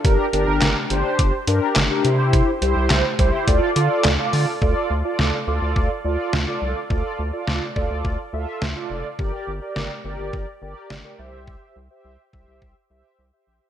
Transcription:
<<
  \new Staff \with { instrumentName = "Analog polysynth" } { \time 4/4 \key d \minor \tempo 4 = 105 <d' g' bes'>16 r16 <d' g' bes'>8. r16 <d' g' c''>8. r16 <d' g' bes'>8 r16 <d' g' bes'>16 <e' g' c''>8~ | <e' g' c''>16 r16 <e' g' c''>8. r16 <e' g' c''>8 <f' a' d''>8 <f' a' d''>8 r16 <f' a' d''>8 r16 | <f' a' d''>8 r16 <f' a' d''>8 r16 <f' a' d''>8. r16 <f' a' d''>8 r16 <f' a' d''>8 r16 | <f' a' d''>8 r16 <f' a' d''>8 r16 <f' a' d''>8. r16 <f' a' e''>8 r16 <f' a' d''>8 r16 |
<g' bes' d''>8 r16 <g' bes' d''>8 r16 <g' bes' d''>8. r16 <g' bes' d''>8 r16 <g' bes' d''>16 <g' c'' e''>8~ | <g' c'' e''>8 r16 <g' c'' e''>8 r16 <g' c'' e''>8. r16 <g' c'' e''>8 r16 <g' c'' e''>8 r16 | }
  \new Staff \with { instrumentName = "Analog synth bass" } { \clef bass \time 4/4 \key d \minor g,,16 r16 g,,16 g,,16 g,,16 r16 g,,16 r16 g,,16 r16 g,16 r16 g,,16 r16 c8~ | c16 r16 c,16 c,16 c,16 r16 c,16 r16 d,16 r16 d16 r16 d,16 r16 d16 r16 | d,16 r16 d,16 r16 d,16 r16 d,16 d,16 d,16 r16 d,16 r16 d,16 r16 c,16 r16 | d,16 r16 d,16 r16 d,16 r16 d,16 d,16 d,16 r16 d,16 r16 d,16 r16 f,,16 r16 |
g,,16 r16 g,,16 r16 g,,16 r16 g,,16 g,,16 g,,16 r16 g,,16 r16 g,,16 r16 c,8~ | c,16 r16 c,16 r16 c,16 r16 c,16 c,16 c,16 r16 c,16 r16 c,16 r16 bes,,16 r16 | }
  \new DrumStaff \with { instrumentName = "Drums" } \drummode { \time 4/4 <hh bd>8 hh8 <hc hh sn>8 hh8 <hh bd>8 hh8 <hc hh sn>8 hh8 | <hh bd>8 hh8 <hc hh sn>8 <hh bd>8 <hh bd>8 hh8 <hc hh sn>8 hho8 | bd4 sn4 bd4 sn4 | bd4 sn8 bd8 bd4 sn4 |
bd4 sn4 bd4 sn4 | bd4 r8 bd8 bd4 r4 | }
>>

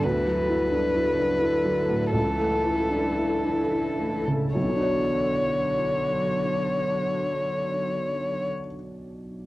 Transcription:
<<
  \new Staff \with { instrumentName = "Violin" } { \time 3/4 \key b \minor \tempo 4 = 73 b'2. | a'2~ a'8 r8 | cis''2.~ | cis''2. | }
  \new Staff \with { instrumentName = "Ambient pad" } { \time 3/4 \key b \minor << { <e' a'>2.~ | <e' a'>2. | <d' cis''>2.~ | <d' cis''>2. | } \\ { fis2. | e2. | fis2.~ | fis2. | } >> }
  \new Staff \with { instrumentName = "Felt piano" } { \time 3/4 \key b \minor \tuplet 3/2 { d,8 fis8 e'8 d'8 e'8 d'8 e'8 fis8 a,8 } | \tuplet 3/2 { cis,8 a8 e'8 d'8 e'8 d'8 e'8 a8 cis8 } | <b,, b, fis d' cis''>2.~ | <b,, b, fis d' cis''>2. | }
  \new Staff \with { instrumentName = "Cello" } { \clef bass \time 3/4 \key b \minor e4 fis8 cis8 d4 | e2~ e8 r8 | d2.~ | d2. | }
>>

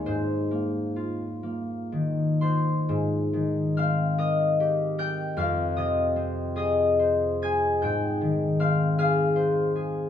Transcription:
\new Staff \with { instrumentName = "Harp" } { \time 6/8 \key aes \major \tempo 4. = 49 << { <c'' ees'' f''>2~ <c'' ees'' f''>8 <c'' c'''>8~ | <c'' c'''>4 <f'' f'''>8 <ees'' ees'''>4 <g'' g'''>8 | <f'' f'''>8 <ees'' ees'''>4 <ees'' ees'''>4 <aes'' aes'''>8 | <g'' g'''>4 <f'' f'''>8 <f'' f'''>4. | } \\ { <aes, aes ees' f'>8 bes8 f'8 bes8 ees8 f'8 | aes,8 ees8 c'8 bes'8 g'8 bes'8 | f,8 c8 c'8 aes'8 c''8 aes'8 | aes,8 ees8 c'8 aes'8 c''8 aes'8 | } >> }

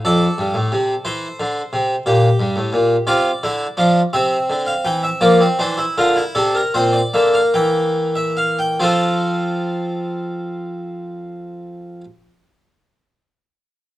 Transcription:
<<
  \new Staff \with { instrumentName = "Harpsichord" } { \time 12/8 \key f \major \tempo 4. = 52 << { d''4. c''2. d''4. | e''8. f''16 g''16 e''16 d''8 c''8 bes'8 a'16 bes'16 c''16 d''16 e''16 f''16 g''8. e''16 f''16 g''16 | <f' a' c''>1. | } \\ { a'2. g'4. f'8 e'8 d'8 | c'4. bes16 c'16 d'16 e'16 f'16 e'16 d'8 c'8 bes2 | c'1. | } >> }
  \new Staff \with { instrumentName = "Harpsichord" } { \clef bass \time 12/8 \key f \major f,8 g,16 a,16 c8 e8 d8 c8 bes,8 g,16 a,16 bes,8 c8 d8 f8 | c8 d8 e8 f8 e8 d8 c8 bes,8 d8 e4. | f1. | }
>>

